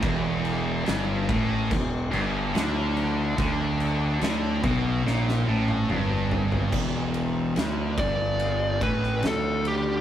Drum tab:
CC |x-x-x-x-x-x-x-x-|x-x-x-x---------|x---------------|
RD |----------------|----------------|--x-x-x-x-x-x-x-|
SD |----o-------o---|----o---oo------|----o------oo---|
T1 |----------------|-----------o----|----------------|
T2 |----------------|------------o---|----------------|
FT |----------------|--------------oo|----------------|
BD |o-----o-o-------|o-----o---------|o-----o---o-----|